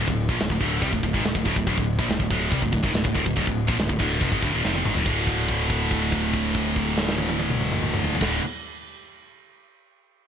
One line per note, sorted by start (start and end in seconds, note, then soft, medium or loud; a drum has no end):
0.08 0.28 D1 medium
0.08 0.25 D2 medium
0.08 0.26 A2 medium
0.08 kick medium
0.29 0.39 A#1 medium
0.29 0.39 A#2 loud
0.29 0.40 F3 loud
0.29 kick loud
0.40 0.50 D1 medium
0.40 0.50 D2 medium
0.40 0.50 A2 medium
0.40 snare loud
0.40 china medium
0.50 0.60 D1 medium
0.50 0.59 D2 medium
0.50 0.60 A2 medium
0.50 kick medium
0.60 0.81 D1 medium
0.60 0.81 D2 medium
0.60 0.82 A2 loud
0.60 0.82 D3 loud
0.60 kick medium
0.81 0.92 C2 loud
0.81 0.92 C3 loud
0.81 0.92 G3 loud
0.81 kick loud
0.81 china medium
0.92 1.03 D1 medium
0.92 1.03 D2 medium
0.92 1.03 A2 medium
0.92 kick medium
1.03 1.14 D1 medium
1.03 1.13 D2 medium
1.03 1.15 A2 medium
1.03 kick medium
1.14 1.23 G#1 medium
1.14 1.24 G#2 medium
1.14 1.25 D#3 loud
1.14 kick medium
1.24 1.34 D1 medium
1.24 1.34 D2 medium
1.24 1.34 A2 medium
1.24 snare loud
1.24 china medium
1.35 1.45 D1 medium
1.35 1.44 D2 medium
1.35 1.45 A2 medium
1.35 kick medium
1.45 1.55 D1 loud
1.45 1.56 D2 loud
1.45 1.56 A2 loud
1.45 kick medium
1.56 1.66 D1 medium
1.56 1.66 D2 medium
1.56 1.67 A2 medium
1.56 kick medium
1.67 1.77 D1 loud
1.67 1.77 D2 loud
1.67 1.77 A2 loud
1.67 kick loud
1.67 china medium
1.77 1.97 D1 medium
1.77 1.95 D2 medium
1.77 1.95 A2 medium
1.77 kick medium
1.99 2.09 A#1 loud
1.99 2.09 A#2 loud
1.99 2.09 F3 loud
1.99 kick loud
2.09 2.19 D1 medium
2.09 2.19 D2 medium
2.09 2.19 A2 medium
2.09 snare loud
2.09 china medium
2.20 2.30 D1 medium
2.20 2.30 D2 medium
2.20 2.31 A2 medium
2.20 kick loud
2.31 2.51 D1 loud
2.31 2.51 D2 loud
2.31 2.52 A2 loud
2.31 2.52 D3 loud
2.31 kick medium
2.52 2.62 C2 medium
2.52 2.62 C3 loud
2.52 2.63 G3 loud
2.52 kick loud
2.52 china medium
2.62 2.72 D1 medium
2.62 2.71 D2 medium
2.62 2.72 A2 medium
2.62 kick medium
2.72 2.83 D1 medium
2.72 2.83 D2 medium
2.72 2.84 A2 medium
2.72 kick medium
2.83 2.91 G#1 loud
2.83 2.93 G#2 medium
2.83 2.94 D#3 medium
2.83 kick medium
2.92 3.03 D1 medium
2.92 3.03 D2 medium
2.92 3.03 A2 medium
2.92 snare loud
2.92 china medium
3.04 3.15 D1 medium
3.04 3.13 D2 medium
3.04 3.14 A2 medium
3.04 kick medium
3.15 3.25 D1 medium
3.15 3.24 D2 loud
3.15 3.25 A2 loud
3.15 kick medium
3.26 3.36 D1 medium
3.26 3.35 D2 medium
3.26 3.35 A2 medium
3.26 kick medium
3.36 3.46 D1 medium
3.36 3.46 D2 medium
3.36 3.46 A2 loud
3.36 kick loud
3.36 china medium
3.47 3.67 D1 medium
3.47 3.64 D2 medium
3.47 3.64 A2 medium
3.47 kick medium
3.67 3.78 A#1 medium
3.67 3.78 A#2 medium
3.67 3.78 F3 loud
3.67 kick loud
3.78 3.89 D1 medium
3.78 3.88 D2 medium
3.78 3.89 A2 medium
3.78 snare loud
3.78 china medium
3.89 3.99 D1 medium
3.89 3.98 D2 medium
3.89 3.98 A2 medium
3.89 kick medium
3.99 4.20 D1 medium
3.99 4.20 D2 medium
3.99 4.21 A2 medium
3.99 4.21 D3 medium
3.99 kick medium
4.20 4.31 F1 medium
4.20 4.31 F2 loud
4.20 4.31 C3 loud
4.20 kick loud
4.20 china medium
4.31 4.42 G#1 loud
4.31 4.42 G#2 medium
4.31 4.42 D#3 loud
4.31 kick medium
4.42 4.53 D1 loud
4.42 4.53 D2 medium
4.42 4.53 A2 medium
4.42 kick medium
4.53 4.64 D#1 loud
4.53 4.63 D#2 medium
4.53 4.64 A#2 loud
4.63 4.84 F1 medium
4.63 4.84 F2 loud
4.63 4.85 C3 loud
4.63 4.85 F3 loud
4.63 snare medium
4.75 high tom medium
4.85 4.95 G#1 loud
4.85 4.95 G#2 medium
4.85 4.95 D#3 loud
4.85 mid tom loud
4.95 5.05 D1 loud
4.95 5.03 D2 medium
4.95 5.05 A2 medium
4.95 floor tom loud
5.04 8.11 D1 loud
5.04 8.19 D2 medium
5.04 8.22 A2 loud
5.04 8.23 D3 loud
5.04 kick loud
5.04 crash loud
5.27 kick medium
5.27 crash soft
5.38 crash soft
5.48 kick medium
5.48 crash soft
5.59 crash soft
5.70 kick medium
5.70 crash soft
5.80 crash medium
5.91 kick medium
5.91 crash soft
6.02 crash soft
6.12 kick medium
6.12 crash medium
6.23 crash soft
6.33 kick medium
6.33 crash soft
6.44 crash soft
6.55 kick medium
6.55 crash medium
6.65 crash medium
6.76 kick medium
6.76 crash medium
6.87 crash medium
6.98 snare medium
7.09 snare loud
7.18 high tom medium
7.29 high tom loud
7.39 high tom loud
7.50 mid tom loud
7.61 mid tom loud
7.72 mid tom loud
7.83 mid tom loud
7.94 mid tom loud
8.04 floor tom loud
8.15 floor tom loud
8.20 8.39 D1 medium
8.20 8.39 D2 medium
8.20 8.41 A2 loud
8.20 8.41 D3 loud
8.20 kick loud
8.20 snare loud
8.20 crash loud